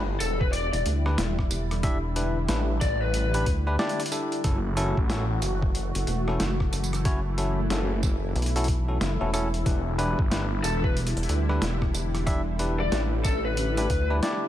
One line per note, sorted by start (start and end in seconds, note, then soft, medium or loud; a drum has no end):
0.00 0.18 G1 loud
0.00 4.40 D3 medium
0.00 4.40 G3 medium
0.00 4.40 E4 medium
0.00 impact medium
0.20 0.70 E1 loud
0.20 0.37 A4 medium
0.20 closed hi-hat medium
0.20 tambourine medium
0.41 0.51 B4 medium
0.41 kick loud
0.52 0.66 D5 medium
0.52 closed hi-hat medium
0.73 0.84 E1 loud
0.73 0.81 D5 medium
0.73 closed hi-hat medium
0.86 1.16 D2 medium
0.86 closed hi-hat medium
1.06 1.20 D4 medium
1.06 1.20 E4 medium
1.06 1.20 G4 medium
1.06 1.20 B4 medium
1.06 cross-stick soft
1.18 1.49 E1 loud
1.18 snare loud
1.18 closed hi-hat medium
1.39 kick medium
1.39 cross-stick soft
1.51 2.47 E1 loud
1.51 closed hi-hat medium
1.51 tambourine medium
1.71 cross-stick soft
1.71 closed hi-hat soft
1.83 1.97 D4 loud
1.83 1.97 E4 medium
1.83 1.98 G4 medium
1.83 1.98 E5 loud
1.83 kick loud
1.83 cross-stick medium
1.83 closed hi-hat medium
2.16 2.38 D4 medium
2.16 2.38 E4 medium
2.16 2.38 G4 medium
2.16 2.38 B4 medium
2.16 closed hi-hat medium
2.48 3.45 A1 loud
2.48 2.70 D4 medium
2.48 2.70 E4 medium
2.48 2.70 G4 medium
2.48 2.70 B4 medium
2.48 snare loud
2.48 closed hi-hat medium
2.81 2.97 D5 medium
2.81 kick loud
2.81 snare soft
2.81 closed hi-hat medium
2.81 tambourine medium
3.01 3.46 B4 medium
3.14 closed hi-hat medium
3.34 3.45 D4 loud
3.34 3.45 E4 medium
3.34 3.45 G4 medium
3.34 3.45 B4 loud
3.34 closed hi-hat medium
3.46 3.77 D2 loud
3.46 kick medium
3.46 closed hi-hat medium
3.67 3.75 D4 loud
3.67 3.75 E4 medium
3.67 3.75 G4 medium
3.67 3.75 B4 loud
3.79 4.01 D4 loud
3.79 4.01 E4 medium
3.79 4.01 G4 medium
3.79 4.01 D5 loud
3.79 snare loud
3.79 closed hi-hat soft
3.89 closed hi-hat soft
4.00 cross-stick soft
4.00 closed hi-hat medium
4.06 closed hi-hat medium
4.12 4.41 D4 medium
4.12 4.41 E4 medium
4.12 4.41 G4 medium
4.12 4.41 A4 medium
4.12 closed hi-hat medium
4.12 tambourine medium
4.32 closed hi-hat soft
4.44 4.94 F#1 loud
4.44 9.62 E3 medium
4.44 9.62 A3 medium
4.44 4.58 C#4 medium
4.44 4.58 E4 medium
4.44 4.58 F#4 medium
4.44 7.03 F#4 medium
4.44 4.58 A4 medium
4.44 kick loud
4.44 closed hi-hat medium
4.77 4.98 C#4 loud
4.77 4.98 E4 medium
4.77 4.98 F#4 medium
4.77 4.99 A4 loud
4.77 closed hi-hat medium
4.97 5.40 A1 loud
4.97 kick loud
5.10 5.24 C#4 medium
5.10 5.24 E4 medium
5.10 5.24 F#4 medium
5.10 5.24 A4 loud
5.10 snare loud
5.10 closed hi-hat medium
5.42 5.92 F#1 loud
5.42 closed hi-hat medium
5.42 tambourine medium
5.62 kick loud
5.75 closed hi-hat medium
5.95 6.06 F#1 medium
5.95 closed hi-hat medium
6.07 6.38 E1 loud
6.07 closed hi-hat medium
6.28 6.42 C#4 medium
6.28 6.42 E4 medium
6.28 6.42 F#4 medium
6.28 6.42 A4 medium
6.28 cross-stick soft
6.40 6.71 F#1 loud
6.40 snare loud
6.40 closed hi-hat medium
6.60 kick medium
6.60 cross-stick soft
6.73 7.69 F#1 loud
6.73 closed hi-hat medium
6.73 tambourine medium
6.84 tambourine soft
6.93 cross-stick soft
6.93 closed hi-hat soft
6.93 tambourine soft
7.05 7.19 C#4 loud
7.05 14.48 E4 medium
7.05 7.19 E4 medium
7.05 7.19 F#4 medium
7.05 7.19 C#5 loud
7.05 kick loud
7.05 cross-stick soft
7.05 closed hi-hat medium
7.38 7.60 C#4 medium
7.38 7.60 E4 medium
7.38 7.60 F#4 medium
7.38 7.60 A4 medium
7.38 closed hi-hat medium
7.70 8.34 F#1 loud
7.70 7.92 C#4 medium
7.70 7.92 E4 medium
7.70 7.92 F#4 medium
7.70 7.92 A4 medium
7.70 snare loud
7.70 closed hi-hat medium
8.03 kick loud
8.03 snare soft
8.03 tambourine medium
8.36 8.99 B1 loud
8.36 closed hi-hat soft
8.42 closed hi-hat soft
8.46 closed hi-hat soft
8.56 8.66 C#4 medium
8.56 8.66 E4 medium
8.56 8.66 F#4 medium
8.56 8.66 A4 loud
8.56 closed hi-hat medium
8.64 kick medium
8.64 closed hi-hat medium
8.68 closed hi-hat medium
8.88 8.97 C#4 medium
8.88 8.97 E4 medium
8.88 8.97 F#4 medium
8.88 8.97 A4 medium
9.01 9.18 F#1 loud
9.01 snare loud
9.01 closed hi-hat medium
9.21 9.64 E1 loud
9.21 9.30 C#4 medium
9.21 9.30 E4 medium
9.21 9.30 F#4 medium
9.21 9.30 A4 loud
9.33 9.48 C#4 medium
9.33 9.48 E4 medium
9.33 9.48 F#4 medium
9.33 9.48 A4 loud
9.33 cross-stick soft
9.33 closed hi-hat medium
9.33 tambourine medium
9.54 closed hi-hat soft
9.66 10.16 E1 loud
9.66 14.48 D3 medium
9.66 14.48 G3 medium
9.66 9.80 D4 medium
9.66 9.80 E4 medium
9.66 9.80 G4 medium
9.66 9.80 B4 medium
9.66 kick loud
9.66 closed hi-hat medium
9.98 10.20 D4 loud
9.98 10.20 E4 medium
9.98 10.20 G4 medium
9.98 10.20 B4 loud
9.98 closed hi-hat medium
10.19 10.62 G1 loud
10.19 kick loud
10.31 10.45 D4 medium
10.31 10.45 E4 medium
10.31 10.45 G4 medium
10.31 10.45 B4 loud
10.31 snare loud
10.31 closed hi-hat medium
10.64 11.13 E1 loud
10.64 10.80 A4 medium
10.64 closed hi-hat medium
10.64 tambourine medium
10.84 10.94 B4 medium
10.84 kick loud
10.97 closed hi-hat medium
11.07 closed hi-hat medium
11.17 11.27 E1 loud
11.17 closed hi-hat medium
11.23 closed hi-hat soft
11.29 11.60 D2 loud
11.29 closed hi-hat medium
11.49 11.64 D4 medium
11.49 11.64 E4 medium
11.49 11.64 G4 medium
11.49 11.64 B4 medium
11.49 cross-stick soft
11.62 11.92 E1 loud
11.62 snare loud
11.62 closed hi-hat medium
11.82 kick medium
11.82 cross-stick soft
11.94 12.90 E1 loud
11.94 closed hi-hat medium
11.94 tambourine medium
12.15 cross-stick soft
12.15 closed hi-hat soft
12.26 12.41 D4 loud
12.26 12.41 E4 medium
12.26 12.41 G4 medium
12.26 12.41 E5 loud
12.26 kick loud
12.26 cross-stick medium
12.26 closed hi-hat medium
12.59 12.81 D4 medium
12.59 12.81 E4 medium
12.59 12.81 G4 medium
12.59 12.81 B4 medium
12.59 closed hi-hat medium
12.80 12.96 D5 medium
12.92 13.88 A1 loud
12.92 13.14 D4 medium
12.92 13.14 E4 medium
12.92 13.14 G4 medium
12.92 13.14 B4 medium
12.92 snare loud
12.92 closed hi-hat medium
13.25 13.41 A4 medium
13.25 kick loud
13.25 snare soft
13.25 closed hi-hat medium
13.25 tambourine medium
13.45 14.10 B4 medium
13.57 closed hi-hat medium
13.77 13.88 D4 loud
13.77 13.88 E4 medium
13.77 13.88 G4 medium
13.77 13.88 B4 loud
13.77 closed hi-hat medium
13.90 14.21 D2 loud
13.90 kick medium
13.90 closed hi-hat medium
14.10 14.19 D4 loud
14.10 14.19 E4 medium
14.10 14.19 G4 medium
14.10 14.19 B4 loud
14.23 14.44 D4 loud
14.23 14.44 E4 medium
14.23 14.44 G4 medium
14.23 14.44 D5 loud
14.23 snare loud
14.23 closed hi-hat medium
14.33 cross-stick soft